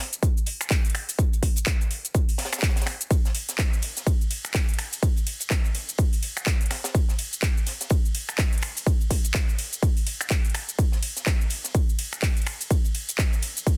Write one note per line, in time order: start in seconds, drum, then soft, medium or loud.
0.13 closed hi-hat medium
0.13 cabasa medium
0.23 kick loud
0.23 closed hi-hat medium
0.23 cabasa medium
0.37 cabasa soft
0.46 closed hi-hat medium
0.46 open hi-hat loud
0.61 finger snap medium
0.61 closed hi-hat medium
0.61 closed hi-hat soft
0.61 cabasa medium
0.70 kick loud
0.70 snare loud
0.70 clap loud
0.70 closed hi-hat medium
0.70 open hi-hat medium
0.70 cabasa medium
0.85 closed hi-hat soft
0.85 cabasa soft
0.90 closed hi-hat medium
0.95 finger snap medium
0.95 closed hi-hat medium
0.95 open hi-hat loud
1.09 open hi-hat medium
1.09 cabasa medium
1.19 kick loud
1.19 closed hi-hat medium
1.19 cabasa medium
1.33 closed hi-hat soft
1.33 cabasa soft
1.43 kick medium
1.43 closed hi-hat medium
1.43 open hi-hat loud
1.56 closed hi-hat soft
1.56 closed hi-hat medium
1.56 cabasa medium
1.66 kick loud
1.66 snare loud
1.66 clap loud
1.66 closed hi-hat medium
1.66 cabasa medium
1.81 closed hi-hat soft
1.81 cabasa soft
1.91 closed hi-hat medium
1.91 open hi-hat loud
2.05 closed hi-hat medium
2.05 cabasa medium
2.14 kick loud
2.14 closed hi-hat medium
2.14 cabasa medium
2.29 open hi-hat medium
2.29 cabasa soft
2.38 snare loud
2.38 closed hi-hat medium
2.38 open hi-hat loud
2.45 snare medium
2.45 closed hi-hat medium
2.52 finger snap medium
2.52 snare medium
2.52 closed hi-hat medium
2.52 cabasa medium
2.58 snare medium
2.58 clap loud
2.58 closed hi-hat medium
2.63 kick loud
2.63 snare loud
2.63 closed hi-hat medium
2.63 cabasa medium
2.69 snare medium
2.69 closed hi-hat medium
2.76 snare medium
2.76 closed hi-hat medium
2.76 cabasa soft
2.81 snare medium
2.81 closed hi-hat medium
2.86 finger snap medium
2.86 snare loud
2.86 closed hi-hat medium
2.86 open hi-hat loud
3.01 closed hi-hat medium
3.01 cabasa medium
3.11 kick loud
3.11 closed hi-hat medium
3.11 closed hi-hat loud
3.11 ride medium
3.11 cabasa medium
3.25 snare soft
3.25 cabasa soft
3.35 closed hi-hat medium
3.35 open hi-hat loud
3.35 ride medium
3.49 snare soft
3.49 closed hi-hat medium
3.49 cabasa medium
3.58 kick loud
3.58 snare loud
3.58 clap loud
3.58 closed hi-hat medium
3.58 ride medium
3.58 cabasa medium
3.73 cabasa soft
3.82 closed hi-hat medium
3.82 open hi-hat loud
3.82 ride medium
3.97 snare soft
3.97 closed hi-hat medium
3.97 cabasa medium
4.07 kick loud
4.07 closed hi-hat medium
4.07 ride medium
4.07 cabasa medium
4.21 cabasa soft
4.30 closed hi-hat medium
4.30 open hi-hat loud
4.30 ride medium
4.45 finger snap medium
4.45 closed hi-hat medium
4.45 closed hi-hat soft
4.45 cabasa medium
4.54 kick loud
4.54 snare loud
4.54 clap loud
4.54 closed hi-hat medium
4.54 open hi-hat medium
4.54 ride medium
4.54 cabasa medium
4.69 closed hi-hat soft
4.69 cabasa soft
4.74 closed hi-hat medium
4.79 finger snap medium
4.79 closed hi-hat medium
4.79 open hi-hat loud
4.79 ride medium
4.93 open hi-hat medium
4.93 cabasa medium
5.03 kick loud
5.03 closed hi-hat medium
5.03 ride medium
5.03 cabasa medium
5.17 closed hi-hat soft
5.17 cabasa soft
5.27 closed hi-hat medium
5.27 open hi-hat loud
5.27 ride medium
5.40 closed hi-hat soft
5.40 closed hi-hat medium
5.40 cabasa medium
5.50 kick loud
5.50 snare loud
5.50 clap loud
5.50 closed hi-hat medium
5.50 ride medium
5.50 cabasa medium
5.64 closed hi-hat soft
5.64 cabasa soft
5.75 closed hi-hat medium
5.75 open hi-hat loud
5.75 ride medium
5.89 closed hi-hat medium
5.89 cabasa medium
5.98 kick loud
5.98 closed hi-hat medium
5.98 ride medium
5.98 cabasa medium
6.13 open hi-hat medium
6.13 cabasa soft
6.23 closed hi-hat medium
6.23 open hi-hat loud
6.23 ride medium
6.37 finger snap medium
6.37 closed hi-hat medium
6.37 cabasa medium
6.46 kick loud
6.46 snare loud
6.46 clap loud
6.46 closed hi-hat medium
6.46 ride medium
6.46 cabasa medium
6.61 closed hi-hat soft
6.61 cabasa soft
6.66 closed hi-hat medium
6.70 finger snap medium
6.70 snare loud
6.70 closed hi-hat medium
6.70 open hi-hat loud
6.70 ride medium
6.84 snare loud
6.84 closed hi-hat medium
6.84 cabasa medium
6.95 kick loud
6.95 closed hi-hat medium
6.95 closed hi-hat loud
6.95 ride medium
6.95 cabasa medium
7.09 snare soft
7.09 cabasa soft
7.19 closed hi-hat medium
7.19 open hi-hat loud
7.19 ride medium
7.33 closed hi-hat medium
7.33 cabasa medium
7.42 kick loud
7.42 snare loud
7.42 clap loud
7.42 closed hi-hat medium
7.42 ride medium
7.42 cabasa medium
7.57 cabasa soft
7.66 snare soft
7.66 closed hi-hat medium
7.66 open hi-hat loud
7.66 ride medium
7.81 snare soft
7.81 closed hi-hat medium
7.81 cabasa medium
7.90 kick loud
7.90 closed hi-hat medium
7.90 ride medium
7.90 cabasa medium
8.05 cabasa soft
8.15 closed hi-hat medium
8.15 open hi-hat loud
8.15 ride medium
8.29 finger snap medium
8.29 closed hi-hat medium
8.29 closed hi-hat soft
8.29 cabasa medium
8.38 kick loud
8.38 snare loud
8.38 clap loud
8.38 closed hi-hat medium
8.38 open hi-hat medium
8.38 ride medium
8.38 cabasa medium
8.53 closed hi-hat soft
8.53 cabasa soft
8.58 closed hi-hat medium
8.62 finger snap medium
8.62 closed hi-hat medium
8.62 open hi-hat loud
8.62 ride medium
8.77 open hi-hat medium
8.77 cabasa medium
8.87 kick loud
8.87 closed hi-hat medium
8.87 closed hi-hat loud
8.87 ride medium
8.87 cabasa medium
9.01 closed hi-hat soft
9.01 cabasa soft
9.10 kick medium
9.10 closed hi-hat medium
9.10 open hi-hat loud
9.10 ride medium
9.24 closed hi-hat soft
9.24 closed hi-hat medium
9.24 cabasa medium
9.34 kick loud
9.34 snare loud
9.34 clap loud
9.34 closed hi-hat medium
9.34 ride medium
9.34 cabasa medium
9.48 closed hi-hat soft
9.48 cabasa soft
9.58 closed hi-hat medium
9.58 open hi-hat loud
9.58 ride medium
9.73 closed hi-hat medium
9.73 cabasa medium
9.83 kick loud
9.83 closed hi-hat medium
9.83 ride medium
9.83 cabasa medium
9.97 open hi-hat medium
9.97 cabasa soft
10.07 closed hi-hat medium
10.07 open hi-hat loud
10.07 ride medium
10.21 finger snap medium
10.21 closed hi-hat medium
10.21 cabasa medium
10.30 kick loud
10.30 snare loud
10.30 clap loud
10.30 closed hi-hat medium
10.30 ride medium
10.30 cabasa medium
10.45 closed hi-hat soft
10.45 cabasa soft
10.50 closed hi-hat medium
10.54 finger snap medium
10.54 closed hi-hat medium
10.54 open hi-hat loud
10.54 ride medium
10.69 closed hi-hat medium
10.69 cabasa medium
10.79 kick loud
10.79 closed hi-hat medium
10.79 ride medium
10.79 cabasa medium
10.92 snare medium
10.92 cabasa soft
11.03 closed hi-hat medium
11.03 open hi-hat loud
11.03 ride medium
11.16 snare soft
11.16 closed hi-hat medium
11.16 cabasa medium
11.26 kick loud
11.26 snare loud
11.26 clap loud
11.26 closed hi-hat medium
11.26 ride medium
11.26 cabasa medium
11.41 cabasa soft
11.50 closed hi-hat medium
11.50 open hi-hat loud
11.50 ride medium
11.64 snare soft
11.64 closed hi-hat medium
11.64 cabasa medium
11.75 kick loud
11.75 closed hi-hat medium
11.75 ride medium
11.75 cabasa medium
11.89 cabasa soft
11.99 closed hi-hat medium
11.99 open hi-hat loud
11.99 ride medium
12.13 finger snap medium
12.13 closed hi-hat medium
12.13 closed hi-hat soft
12.13 cabasa medium
12.22 kick loud
12.22 snare loud
12.22 clap loud
12.22 closed hi-hat medium
12.22 open hi-hat medium
12.22 ride medium
12.22 cabasa medium
12.37 closed hi-hat soft
12.37 cabasa soft
12.42 closed hi-hat medium
12.46 finger snap medium
12.46 closed hi-hat medium
12.46 open hi-hat loud
12.46 ride medium
12.61 open hi-hat medium
12.61 cabasa medium
12.70 kick loud
12.70 closed hi-hat loud
12.70 closed hi-hat medium
12.70 ride medium
12.70 cabasa medium
12.84 closed hi-hat soft
12.84 cabasa soft
12.95 closed hi-hat medium
12.95 open hi-hat loud
12.95 ride medium
13.09 closed hi-hat soft
13.09 closed hi-hat medium
13.09 cabasa medium
13.18 kick loud
13.18 snare loud
13.18 clap loud
13.18 closed hi-hat medium
13.18 ride medium
13.18 cabasa medium
13.33 closed hi-hat soft
13.33 cabasa soft
13.42 closed hi-hat medium
13.42 open hi-hat loud
13.42 ride medium
13.57 closed hi-hat medium
13.57 cabasa medium
13.67 kick loud
13.67 closed hi-hat medium
13.67 ride medium
13.67 cabasa medium